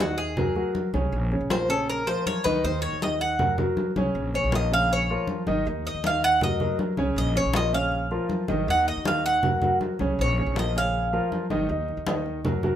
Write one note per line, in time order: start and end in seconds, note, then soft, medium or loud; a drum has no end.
0.00 0.61 D#2 loud
0.00 0.31 D#3 medium
0.00 0.31 D#4 medium
0.00 0.18 F#4 medium
0.00 0.31 D#5 medium
0.18 0.71 G#4 medium
0.18 high conga soft
0.37 0.53 F#3 medium
0.37 0.53 F#4 medium
0.37 0.53 A#4 medium
0.37 high conga soft
0.37 low conga medium
0.56 0.87 F#3 medium
0.56 0.87 F#4 medium
0.56 0.87 A#4 medium
0.56 high conga soft
0.75 high conga medium
0.93 1.12 C2 loud
0.93 1.25 C#3 medium
0.93 1.25 C#4 loud
0.93 1.25 C#5 medium
0.93 high conga medium
1.12 1.39 A#1 loud
1.12 high conga soft
1.32 1.47 C#3 medium
1.32 1.47 C#4 medium
1.32 1.47 C#5 medium
1.32 high conga soft
1.41 2.13 A#1 loud
1.50 1.66 F3 medium
1.50 1.66 F4 medium
1.50 1.66 A#4 medium
1.50 1.69 C5 medium
1.50 high conga loud
1.69 2.00 C#3 medium
1.69 2.00 C#4 medium
1.69 1.88 A4 medium
1.69 2.00 C#5 loud
1.69 high conga soft
1.89 2.07 A#4 medium
1.89 high conga soft
2.07 2.38 F3 medium
2.07 2.38 F4 medium
2.07 2.38 A#4 medium
2.07 2.25 C5 medium
2.07 high conga soft
2.26 2.45 C#5 loud
2.26 high conga medium
2.44 2.63 C#2 medium
2.44 2.60 D#3 medium
2.44 2.61 D#4 loud
2.44 2.63 B4 loud
2.44 2.61 D#5 medium
2.44 high conga medium
2.64 2.91 D#2 loud
2.64 2.95 D#3 medium
2.64 2.95 D#4 medium
2.64 2.81 C5 medium
2.64 2.95 D#5 medium
2.64 high conga soft
2.82 3.01 C#5 medium
2.82 high conga soft
2.92 3.64 D#2 medium
3.02 3.33 D#3 medium
3.02 3.33 D#4 medium
3.02 3.33 D#5 medium
3.02 3.21 D#5 medium
3.02 high conga medium
3.21 3.56 F#5 medium
3.21 high conga soft
3.39 3.55 F#3 medium
3.39 3.55 F#4 medium
3.39 3.55 A#4 medium
3.39 high conga soft
3.39 low conga medium
3.58 3.89 F#3 medium
3.58 3.89 F#4 medium
3.58 3.90 A#4 medium
3.58 high conga soft
3.58 low conga medium
3.77 high conga medium
3.96 4.14 C2 loud
3.96 4.27 C#3 medium
3.96 4.28 C#4 loud
3.96 4.28 C#5 loud
3.96 high conga medium
4.14 4.42 A#1 loud
4.14 high conga soft
4.34 4.49 C#3 medium
4.34 4.50 C#4 medium
4.34 4.50 C#5 medium
4.34 4.53 C#5 medium
4.34 high conga soft
4.44 5.15 A#1 loud
4.52 4.68 F3 medium
4.52 4.68 F4 medium
4.52 4.68 A#4 medium
4.52 4.72 D#5 medium
4.52 high conga loud
4.72 5.03 C#3 medium
4.72 5.03 C#4 medium
4.72 5.03 C#5 medium
4.72 4.91 F5 loud
4.72 high conga soft
4.90 5.27 C#5 medium
4.90 high conga soft
5.10 5.41 F3 medium
5.10 5.41 F4 medium
5.10 5.41 A#4 medium
5.10 high conga soft
5.27 high conga medium
5.47 5.65 G#1 medium
5.47 5.63 D#3 loud
5.47 5.63 D#4 loud
5.47 5.63 D#5 medium
5.47 high conga medium
5.66 5.93 D#2 loud
5.66 5.97 D#3 medium
5.66 5.97 D#4 medium
5.66 5.97 D#5 medium
5.66 high conga soft
5.85 6.04 D#5 medium
5.85 high conga soft
5.95 6.66 D#2 medium
6.04 6.35 D#3 medium
6.04 6.35 D#4 medium
6.04 6.35 D#5 medium
6.04 6.23 F5 medium
6.04 high conga medium
6.22 6.42 F#5 loud
6.22 high conga soft
6.41 6.57 F#3 medium
6.41 6.57 F#4 medium
6.41 6.57 A#4 medium
6.41 6.78 D#5 medium
6.41 high conga soft
6.41 low conga medium
6.60 6.91 F#3 medium
6.60 6.92 F#4 medium
6.60 6.92 A#4 medium
6.60 high conga soft
6.60 low conga medium
6.79 high conga medium
6.97 7.16 C2 medium
6.97 7.29 C#3 loud
6.97 7.29 C#4 loud
6.97 7.29 C#5 loud
6.97 high conga medium
7.16 7.43 A#1 loud
7.16 7.36 D#5 medium
7.16 high conga soft
7.35 7.51 C#3 medium
7.35 7.51 C#4 medium
7.35 7.51 C#5 medium
7.35 7.55 C#5 medium
7.35 high conga soft
7.45 8.17 A#1 loud
7.54 7.70 F3 medium
7.54 7.70 F4 medium
7.54 7.70 A#4 medium
7.54 7.74 D#5 medium
7.54 high conga loud
7.73 8.04 C#3 medium
7.73 8.04 C#4 loud
7.73 8.05 C#5 medium
7.73 8.27 F5 medium
7.73 high conga soft
7.92 high conga soft
8.11 8.42 F3 medium
8.11 8.42 F4 medium
8.11 8.42 A#4 medium
8.11 high conga soft
8.29 high conga medium
8.48 8.67 G#1 medium
8.48 8.64 D#3 loud
8.48 8.64 D#4 medium
8.48 8.64 D#5 loud
8.48 high conga medium
8.67 8.95 D#2 loud
8.67 8.98 D#3 medium
8.67 8.99 D#4 medium
8.67 8.99 D#5 medium
8.67 8.87 F#5 medium
8.67 high conga soft
8.86 9.06 D#5 medium
8.86 high conga soft
8.97 9.68 D#2 medium
9.05 9.36 D#3 medium
9.05 9.36 D#4 medium
9.05 9.37 D#5 medium
9.05 9.25 F5 medium
9.05 high conga medium
9.24 9.78 F#5 loud
9.24 high conga soft
9.43 9.59 F#3 medium
9.43 9.59 F#4 medium
9.43 9.59 A#4 medium
9.43 high conga soft
9.43 low conga medium
9.62 9.93 F#3 medium
9.62 9.93 F#4 medium
9.62 9.93 A#4 medium
9.62 high conga soft
9.62 low conga medium
9.81 high conga medium
9.99 10.17 C2 medium
9.99 10.31 C#3 loud
9.99 10.31 C#4 loud
9.99 10.31 C#5 medium
9.99 high conga medium
10.18 10.45 A#1 loud
10.18 10.55 C#5 medium
10.18 high conga soft
10.37 10.53 C#3 medium
10.37 10.54 C#4 medium
10.37 10.54 C#5 medium
10.37 high conga soft
10.46 11.18 A#1 loud
10.56 10.72 F3 medium
10.56 10.72 F4 medium
10.56 10.72 A#4 medium
10.56 10.76 D#5 medium
10.56 high conga medium
10.76 11.07 C#3 medium
10.76 11.07 C#4 medium
10.76 11.07 C#5 medium
10.76 11.29 F5 loud
10.76 high conga soft
10.94 high conga soft
11.13 11.44 F3 medium
11.13 11.44 F4 medium
11.13 11.44 A#4 medium
11.13 high conga soft
11.32 high conga medium
11.50 11.69 G#1 loud
11.50 11.66 D#3 loud
11.50 11.66 D#4 loud
11.50 11.66 D#5 loud
11.50 high conga medium
11.69 11.96 D#2 loud
11.69 12.00 D#3 medium
11.69 12.00 D#4 medium
11.69 12.00 D#5 medium
11.69 high conga soft
11.88 high conga soft
11.97 12.69 D#2 medium
12.07 12.38 D#3 medium
12.07 12.38 D#4 medium
12.07 12.38 D#5 medium
12.07 high conga loud
12.26 high conga soft
12.45 12.60 F#3 medium
12.45 12.60 F#4 medium
12.45 12.60 A#4 medium
12.45 high conga soft
12.45 low conga medium
12.63 12.76 F#3 medium
12.63 12.76 F#4 medium
12.63 12.76 A#4 medium
12.63 high conga soft
12.63 low conga medium